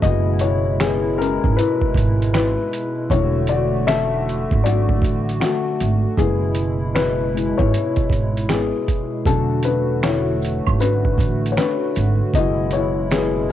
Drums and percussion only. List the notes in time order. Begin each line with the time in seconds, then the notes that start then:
0.02 kick, closed hi-hat
0.39 closed hi-hat
0.80 finger snap, snare, closed hi-hat
1.22 closed hi-hat
1.44 kick
1.59 closed hi-hat
1.81 kick
1.94 kick, closed hi-hat
2.22 closed hi-hat
2.34 finger snap, snare, closed hi-hat
2.73 closed hi-hat
3.10 kick, closed hi-hat
3.47 closed hi-hat
3.88 finger snap, snare, closed hi-hat
4.29 closed hi-hat
4.51 kick
4.66 closed hi-hat
4.89 kick
5.02 kick, closed hi-hat
5.29 closed hi-hat
5.41 finger snap, snare, closed hi-hat
5.80 closed hi-hat
6.18 kick, closed hi-hat
6.55 closed hi-hat
6.96 finger snap, snare, closed hi-hat
7.37 closed hi-hat
7.59 kick
7.74 closed hi-hat
7.96 kick, closed hi-hat
8.10 kick, closed hi-hat
8.37 closed hi-hat
8.49 finger snap, snare, closed hi-hat
8.88 kick, closed hi-hat
9.26 kick, closed hi-hat, maracas
9.63 closed hi-hat, maracas
10.03 finger snap, snare, closed hi-hat, maracas
10.42 closed hi-hat, maracas
10.67 kick, high woodblock
10.80 closed hi-hat, maracas
11.05 kick
11.18 kick, closed hi-hat, maracas
11.46 closed hi-hat
11.57 finger snap, snare, closed hi-hat, maracas
11.95 closed hi-hat, maracas
12.34 kick, closed hi-hat, maracas
12.71 closed hi-hat, maracas
13.11 finger snap, snare, closed hi-hat, maracas